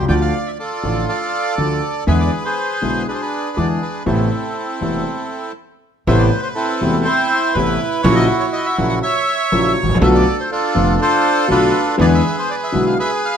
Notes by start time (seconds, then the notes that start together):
0.02 C#2
0.08 D2 D3 F3 A3 F4 D5 G5
0.21 F5
0.46 E5
0.59 F4 A4 D5
0.83 A1 A2 D3 F3 A3 F4
1.09 A4 D5 F5
1.58 D2 D3 F3 A3 F4
2.07 E2 D3 E3 G#3 B3 E4 G#4 B4 E5
2.20 D5
2.45 G#4 C5
2.82 B1 B2 D3 G#3 B3 E4
3.08 D4 G#4 B4
3.15 C5
3.22 B4
3.57 E2 D3 E3 G#3 B3 E4 D5
3.82 B4
4.06 A1 A2 C3 A3 B3 C4 E4 A4
4.81 E1 E2 C3 A3 B3 E4
6.07 A1 A2 C3 A3 B3 E4 B4 C5 E5
6.19 D5
6.42 C5
6.55 C4 E4 A4
6.81 E1 E2 C3 A3 B3 E4
7.05 E4 C5
7.54 A1 A2 C3 A3 B3 E4 B4
8.03 A#1 A#2 C#3 F#3 A#3 E4 F#4 C#5
8.16 D#5
8.40 C#5
8.53 D#5
8.66 E5
8.78 A#1 A#2 C#3 F#3 A#3 E4
8.89 F#5
9.03 C#5 E5
9.52 A#1 A#2 C#3 F#3 A#3 E4
9.83 G#1
9.89 A1
9.95 A#1
10.01 B1 B2 D3 A3 B3 F4 A4 E5
10.15 D5
10.40 C5
10.52 D4 F4 A4
10.75 F1 F2 D3 A3 B3 F4
11.02 F4 A4 C5
11.48 B1 B2 D3 A3 B3 D4 F4 B4
11.98 E2 D3 E3 G#3 B3 E4 G#4 B4 D5
12.15 E5
12.39 C5
12.50 D5
12.64 E5
12.72 B1 B2 D3 G#3 B3 E4
12.87 F5
12.99 G#4 B4 E5
13.25 F5